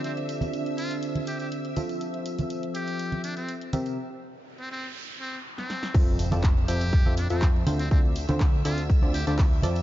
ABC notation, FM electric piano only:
X:1
M:4/4
L:1/16
Q:1/4=122
K:F
V:1 name="FM electric piano"
[D,CFAd]12- [D,CFAd]2 [F,CFAe]2- | [F,CFAe]12- [F,CFAe]2 [C,CGBe]2 | z16 | [F,CFAe]2 z [F,CFAd] z2 [F,CFAe] z2 [F,CFAe] z [F,CFAe] z2 [D,CFAc] z |
[D,CFAd]2 z [D,CFAc] z2 [D,CFAd] z2 [D,CFAd] z [D,CFAd] z2 [F,CFAd] z |]